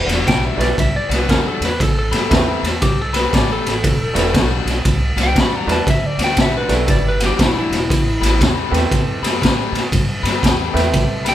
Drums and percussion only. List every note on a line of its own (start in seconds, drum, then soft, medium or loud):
0.09 snare soft
0.09 ride medium
0.27 kick medium
0.27 snare loud
0.27 ride medium
0.60 snare soft
0.60 ride medium
0.78 kick medium
0.78 snare soft
0.78 ride medium
1.11 snare soft
1.11 ride medium
1.29 kick medium
1.29 snare medium
1.29 ride medium
1.62 snare soft
1.62 ride medium
1.80 kick medium
1.80 snare soft
1.80 ride medium
2.12 snare soft
2.12 ride medium
2.31 kick medium
2.31 snare loud
2.31 ride medium
2.64 snare soft
2.64 ride medium
2.82 kick medium
2.82 snare soft
2.82 ride medium
3.14 snare soft
3.14 ride medium
3.33 kick medium
3.33 snare loud
3.33 ride medium
3.66 snare soft
3.66 ride medium
3.84 kick medium
3.84 snare soft
3.84 ride medium
4.16 snare soft
4.16 ride medium
4.34 kick medium
4.34 snare loud
4.34 ride medium
4.67 snare soft
4.67 ride medium
4.85 kick medium
4.85 snare soft
4.85 ride medium
5.18 snare soft
5.18 ride medium
5.36 kick medium
5.36 snare loud
5.36 ride medium
5.69 snare soft
5.69 ride medium
5.87 kick medium
5.87 snare soft
5.87 ride medium
6.19 snare soft
6.19 ride medium
6.37 kick medium
6.37 snare loud
6.37 ride medium
6.69 snare soft
6.69 ride medium
6.88 kick medium
6.88 snare soft
6.88 ride medium
7.20 snare soft
7.20 ride medium
7.39 kick medium
7.39 snare loud
7.39 ride medium
7.72 snare soft
7.72 ride medium
7.90 kick medium
7.90 snare soft
7.90 ride medium
8.23 snare soft
8.23 ride medium
8.41 kick medium
8.41 snare loud
8.41 ride medium
8.74 snare soft
8.74 ride medium
8.92 kick medium
8.92 snare soft
8.92 ride medium
9.24 snare soft
9.24 ride medium
9.42 kick medium
9.42 snare loud
9.42 ride medium
9.75 snare soft
9.75 ride medium
9.92 kick medium
9.92 snare soft
9.92 ride medium
10.25 snare soft
10.25 ride medium
10.43 kick medium
10.43 snare loud
10.43 ride medium
10.76 snare soft
10.76 ride medium
10.93 kick medium
10.93 snare soft
10.93 ride medium
11.26 snare soft
11.26 ride medium